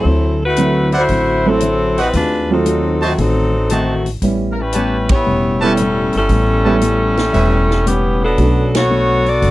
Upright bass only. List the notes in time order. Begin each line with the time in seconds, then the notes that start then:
0.05 D2
1.09 A1
2.14 D#2
3.18 A1
4.22 A1
5.27 E1
6.14 G1
6.29 A1
7.34 E1
8.38 B1
9.43 F#1